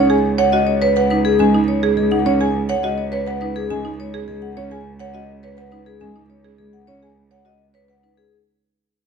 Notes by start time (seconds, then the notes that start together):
Already playing: C#2 C#4 C#5
0.10 G#4 G#5
0.38 C#5 F#5
0.52 F#4 D#5
0.67 C#5
0.82 B4 C#5
0.96 B4 F#5
1.10 D#4 B4
1.25 G#4
1.39 G#3 C#4 G#5
1.54 D#4
1.68 C#5
1.83 G#4
1.97 G#3 G#4
2.11 D#4 F#5
2.26 C#4 C#5
2.41 G#4 G#5
2.69 C#5 F#5
2.83 F#4 D#5
2.98 C#5
3.12 B4 C#5
3.27 B4 F#5
3.41 D#4 B4
3.56 G#4
3.70 G#3 C#4 G#5
3.85 D#4
4.00 C#5
4.14 G#4
4.28 G#3 G#4
4.42 F#5
4.57 C#4 C#5
4.71 G#4 G#5
4.99 C#5 F#5
5.14 F#4 D#5
5.43 B4 C#5
5.57 B4 F#5
5.72 D#4 B4
5.86 G#4
6.01 G#3 C#4 G#5
6.16 D#4
6.30 C#5
6.45 G#4
6.58 G#3 G#4
6.73 F#5
6.87 C#4 C#5
7.02 G#4 G#5
7.31 C#5 F#5
7.45 F#4 D#5
7.74 B4 C#5
7.88 B4 F#5
8.03 D#4 B4
8.17 G#4